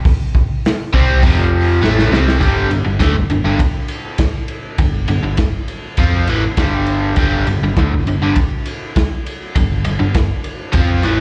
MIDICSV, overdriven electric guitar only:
0, 0, Header, 1, 3, 480
1, 0, Start_track
1, 0, Tempo, 594059
1, 39, Time_signature, 4, 2, 24, 8
1, 9054, End_track
2, 0, Start_track
2, 0, Title_t, "Overdriven electric guitar"
2, 0, Program_c, 0, 29
2, 751, Note_on_c, 0, 48, 88
2, 758, Note_on_c, 0, 55, 93
2, 765, Note_on_c, 0, 60, 105
2, 986, Note_off_c, 0, 48, 0
2, 987, Note_on_c, 0, 41, 90
2, 990, Note_off_c, 0, 55, 0
2, 993, Note_off_c, 0, 60, 0
2, 998, Note_on_c, 0, 48, 102
2, 1007, Note_on_c, 0, 53, 105
2, 1464, Note_off_c, 0, 41, 0
2, 1464, Note_off_c, 0, 48, 0
2, 1468, Note_on_c, 0, 45, 87
2, 1471, Note_off_c, 0, 53, 0
2, 1474, Note_on_c, 0, 52, 100
2, 1478, Note_on_c, 0, 57, 104
2, 1704, Note_off_c, 0, 45, 0
2, 1707, Note_off_c, 0, 52, 0
2, 1709, Note_off_c, 0, 57, 0
2, 1714, Note_on_c, 0, 48, 100
2, 1721, Note_on_c, 0, 55, 96
2, 1723, Note_on_c, 0, 60, 102
2, 1945, Note_off_c, 0, 48, 0
2, 1945, Note_off_c, 0, 55, 0
2, 1945, Note_on_c, 0, 43, 99
2, 1948, Note_on_c, 0, 50, 103
2, 1951, Note_off_c, 0, 60, 0
2, 1954, Note_on_c, 0, 55, 108
2, 2177, Note_off_c, 0, 43, 0
2, 2177, Note_off_c, 0, 50, 0
2, 2186, Note_on_c, 0, 43, 67
2, 2187, Note_off_c, 0, 55, 0
2, 2187, Note_on_c, 0, 50, 75
2, 2292, Note_off_c, 0, 50, 0
2, 2294, Note_off_c, 0, 43, 0
2, 2301, Note_on_c, 0, 50, 69
2, 2304, Note_on_c, 0, 43, 59
2, 2410, Note_off_c, 0, 50, 0
2, 2420, Note_on_c, 0, 50, 82
2, 2429, Note_off_c, 0, 43, 0
2, 2430, Note_on_c, 0, 57, 94
2, 2535, Note_off_c, 0, 50, 0
2, 2540, Note_on_c, 0, 43, 64
2, 2545, Note_off_c, 0, 57, 0
2, 2545, Note_on_c, 0, 50, 67
2, 2656, Note_off_c, 0, 43, 0
2, 2664, Note_off_c, 0, 50, 0
2, 2665, Note_on_c, 0, 43, 66
2, 2673, Note_on_c, 0, 50, 67
2, 2772, Note_off_c, 0, 43, 0
2, 2778, Note_off_c, 0, 50, 0
2, 2782, Note_on_c, 0, 43, 80
2, 2788, Note_on_c, 0, 50, 86
2, 2901, Note_off_c, 0, 43, 0
2, 2904, Note_off_c, 0, 50, 0
2, 3869, Note_on_c, 0, 50, 68
2, 3872, Note_on_c, 0, 43, 69
2, 4064, Note_off_c, 0, 50, 0
2, 4066, Note_off_c, 0, 43, 0
2, 4107, Note_on_c, 0, 43, 64
2, 4109, Note_on_c, 0, 50, 69
2, 4213, Note_off_c, 0, 43, 0
2, 4222, Note_off_c, 0, 50, 0
2, 4223, Note_on_c, 0, 43, 60
2, 4231, Note_on_c, 0, 50, 64
2, 4421, Note_off_c, 0, 43, 0
2, 4425, Note_off_c, 0, 50, 0
2, 4837, Note_on_c, 0, 53, 85
2, 4843, Note_on_c, 0, 60, 89
2, 4850, Note_on_c, 0, 65, 100
2, 5069, Note_off_c, 0, 53, 0
2, 5073, Note_off_c, 0, 60, 0
2, 5076, Note_off_c, 0, 65, 0
2, 5082, Note_on_c, 0, 45, 97
2, 5087, Note_on_c, 0, 52, 107
2, 5192, Note_off_c, 0, 45, 0
2, 5195, Note_off_c, 0, 52, 0
2, 5314, Note_on_c, 0, 43, 85
2, 5322, Note_on_c, 0, 50, 87
2, 5325, Note_on_c, 0, 55, 96
2, 5786, Note_off_c, 0, 43, 0
2, 5793, Note_off_c, 0, 50, 0
2, 5794, Note_off_c, 0, 55, 0
2, 5795, Note_on_c, 0, 43, 100
2, 5802, Note_on_c, 0, 50, 103
2, 5810, Note_on_c, 0, 55, 110
2, 6029, Note_off_c, 0, 43, 0
2, 6033, Note_off_c, 0, 50, 0
2, 6037, Note_off_c, 0, 55, 0
2, 6041, Note_on_c, 0, 43, 65
2, 6043, Note_on_c, 0, 50, 75
2, 6159, Note_off_c, 0, 43, 0
2, 6161, Note_off_c, 0, 50, 0
2, 6168, Note_on_c, 0, 43, 65
2, 6171, Note_on_c, 0, 50, 67
2, 6280, Note_off_c, 0, 50, 0
2, 6283, Note_off_c, 0, 43, 0
2, 6290, Note_on_c, 0, 50, 85
2, 6297, Note_on_c, 0, 57, 106
2, 6397, Note_off_c, 0, 50, 0
2, 6400, Note_off_c, 0, 57, 0
2, 6405, Note_on_c, 0, 43, 61
2, 6410, Note_on_c, 0, 50, 66
2, 6513, Note_off_c, 0, 43, 0
2, 6514, Note_off_c, 0, 50, 0
2, 6523, Note_on_c, 0, 43, 65
2, 6523, Note_on_c, 0, 50, 71
2, 6631, Note_off_c, 0, 43, 0
2, 6637, Note_off_c, 0, 50, 0
2, 6641, Note_on_c, 0, 43, 86
2, 6646, Note_on_c, 0, 50, 83
2, 6752, Note_off_c, 0, 43, 0
2, 6755, Note_off_c, 0, 50, 0
2, 7723, Note_on_c, 0, 43, 71
2, 7728, Note_on_c, 0, 50, 69
2, 7913, Note_off_c, 0, 43, 0
2, 7915, Note_off_c, 0, 50, 0
2, 7957, Note_on_c, 0, 43, 66
2, 7958, Note_on_c, 0, 50, 77
2, 8063, Note_off_c, 0, 43, 0
2, 8068, Note_off_c, 0, 50, 0
2, 8073, Note_on_c, 0, 43, 61
2, 8078, Note_on_c, 0, 50, 67
2, 8268, Note_off_c, 0, 43, 0
2, 8270, Note_off_c, 0, 50, 0
2, 8668, Note_on_c, 0, 53, 88
2, 8677, Note_on_c, 0, 60, 93
2, 8686, Note_on_c, 0, 65, 97
2, 8905, Note_off_c, 0, 53, 0
2, 8910, Note_off_c, 0, 60, 0
2, 8914, Note_on_c, 0, 45, 100
2, 8915, Note_off_c, 0, 65, 0
2, 8924, Note_on_c, 0, 52, 99
2, 9029, Note_off_c, 0, 45, 0
2, 9033, Note_off_c, 0, 52, 0
2, 9054, End_track
3, 0, Start_track
3, 0, Title_t, "Muted overdriven electric guitar strokes"
3, 5205, Note_on_c, 9, 29, 58
3, 5286, Note_off_c, 9, 29, 0
3, 9054, End_track
0, 0, End_of_file